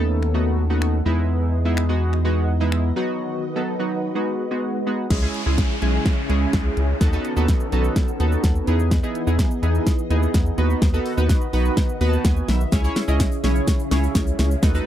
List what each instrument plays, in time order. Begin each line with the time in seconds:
Already playing: analog synth bass D#2, string machine D#3 B3 C#4 A4
0.00 synth keys A3 B3 D#4 A4
0.23 finger snap
0.34 synth keys A3 B3 D#4 F#4
0.70 synth keys A3 B3 D#4 F#4
0.82 finger snap
1.05 analog synth bass E2, string machine E3 G#4 D#5, synth keys G#3 B3 D#4 E4
1.65 synth keys G#3 B3 D#4 E4
1.77 finger snap
1.89 synth keys G#3 B3 D#4 F#4
2.13 finger snap
2.25 synth keys G#3 B3 D#4 F#4
2.60 synth keys G#3 B3 D#4 E4
2.72 finger snap
2.96 string machine D#3 F#4 B4, synth keys F#3 B3 D#4 F#4
3.56 synth keys F#3 B3 D#4 A4
3.79 synth keys F#3 B3 D#4 F#4
4.15 synth keys G#3 B3 D#4 F#4, string machine G#3
4.51 synth keys G#3 B3 D#4 F#4
4.86 synth keys G#3 B3 D#4 F#4
5.10 analog synth bass C#2, string machine C#3 C#4 E4 G#4, synth keys G#3 C#4 E4 G#4, kick, snare, closed hi-hat, crash, downlifter
5.22 synth keys G#3 C#4 E4 G#4
5.34 closed hi-hat
5.46 analog synth bass C#2, synth keys G#3 C#4 E4 G#4
5.58 kick, snare, closed hi-hat
5.82 analog synth bass B1, synth keys G#3 C#4 E4 G#4, closed hi-hat
6.06 kick, snare, closed hi-hat
6.29 analog synth bass C#2, synth keys G#3 C#4 E4 G#4, closed hi-hat
6.53 analog synth bass C#2, kick, snare, closed hi-hat
6.77 analog synth bass C#2, closed hi-hat
7.01 analog synth bass D#2, string machine D#3 B3 A4, synth keys B3 D#4 F#4 A4, kick, snare, closed hi-hat, shaker
7.13 synth keys B3 D#4 F#4 A4, shaker
7.25 closed hi-hat, shaker
7.36 analog synth bass D#2, synth keys B3 D#4 F#4 A4, shaker
7.48 kick, snare, closed hi-hat, shaker
7.60 shaker
7.72 analog synth bass B1, synth keys B3 D#4 F#4 A4, closed hi-hat, shaker
7.84 shaker
7.96 kick, snare, closed hi-hat, shaker
8.08 shaker
8.20 analog synth bass D#2, synth keys B3 D#4 F#4 A4, closed hi-hat, shaker
8.32 shaker
8.44 analog synth bass D#2, kick, snare, closed hi-hat, shaker
8.55 shaker
8.67 analog synth bass E2, string machine E3 G#4 D#5, synth keys B3 D#4 E4 G#4, closed hi-hat, shaker
8.80 shaker
8.91 kick, snare, closed hi-hat, shaker
9.03 synth keys B3 D#4 E4 G#4, shaker
9.15 closed hi-hat, shaker
9.27 analog synth bass E2, synth keys B3 D#4 E4 G#4, shaker
9.39 kick, snare, closed hi-hat, shaker
9.51 shaker
9.62 analog synth bass E2, synth keys B3 D#4 E4 G#4, closed hi-hat, shaker
9.75 shaker
9.87 kick, snare, closed hi-hat, shaker
9.99 shaker
10.10 analog synth bass D#2, synth keys B3 D#4 E4 G#4, closed hi-hat, shaker
10.23 shaker
10.34 analog synth bass E2, kick, snare, closed hi-hat, shaker
10.46 shaker
10.58 analog synth bass D#2, string machine D#3 F#4 B4, synth keys B3 D#4 F#4 B4, closed hi-hat, shaker
10.70 shaker
10.82 analog synth bass D#2, kick, snare, closed hi-hat, shaker
10.93 synth keys B3 D#4 F#4 A4, shaker
11.06 open hi-hat, shaker
11.17 analog synth bass D#2, synth keys B3 D#4 F#4 B4, shaker
11.29 kick, snare, closed hi-hat, shaker
11.41 shaker
11.53 analog synth bass B1, synth keys B3 D#4 F#4 B4, open hi-hat, shaker
11.65 shaker
11.77 kick, snare, closed hi-hat, shaker
11.89 shaker
12.01 analog synth bass D#2, synth keys B3 D#4 F#4 B4 B5, open hi-hat, shaker
12.09 synth keys A5
12.13 shaker
12.25 analog synth bass D#2, synth keys G#5, kick, snare, closed hi-hat, shaker
12.36 shaker
12.48 analog synth bass B1, synth keys E5, snare, open hi-hat, shaker
12.61 shaker
12.72 analog synth bass C#2, string machine C#3 C#4 E4 G#4, synth keys C#4 E4 G#4 C#5, kick, snare, closed hi-hat, riser, shaker
12.84 synth keys C#4 E4 G#4 C#5, shaker
12.96 snare, open hi-hat, shaker
13.08 analog synth bass C#2, synth keys C#4 E4 G#4 D#5, shaker
13.20 kick, snare, closed hi-hat, shaker
13.32 shaker
13.44 analog synth bass B1, synth keys C#4 E4 G#4 C#5, snare, open hi-hat, shaker
13.55 shaker
13.67 kick, snare, closed hi-hat, shaker
13.79 shaker
13.91 analog synth bass C#2, synth keys C#4 E4 G#4 C#5, snare, open hi-hat, shaker
14.03 shaker
14.15 analog synth bass C#2, kick, snare, closed hi-hat, shaker
14.27 shaker
14.39 analog synth bass C#2, snare, open hi-hat, shaker
14.51 shaker
14.62 analog synth bass D#2, string machine D#3 B3 A4, synth keys D#4 F#4 A4 B4, kick, snare, closed hi-hat, shaker
14.74 synth keys D#4 F#4 A4 B4, shaker